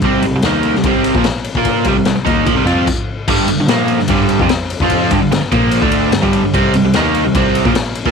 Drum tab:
CC |----------------|------------x---|x---------------|----------------|
RD |x-x-x-x-x-x-x-x-|x-x-x-x-x-x-----|--x-x-x-x-x-x-x-|x-x-x-x-x-x-x-x-|
SD |----o--o----o---|----o-----------|----o--o----o---|----o-------o---|
BD |o-------o--o---o|o-o---o-o---o---|o-------o--o---o|o-o---o--o---o--|

CC |----------------|
RD |x-x-x-x-x-x-x-x-|
SD |----o-------o---|
BD |o-------o--o---o|